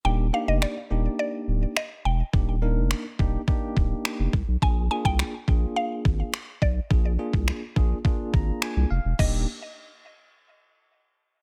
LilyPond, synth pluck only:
\new Staff \with { instrumentName = "Synth pluck" } { \time 4/4 \key ees \major \tempo 4 = 105 g''8 f''16 ees''16 d''4 d''4 ees''8 g''8~ | g''2.~ g''8 r8 | aes''8 aes''16 g''4~ g''16 f''4. d''8~ | d''4. r2 r8 |
ees''8 r2. r8 | }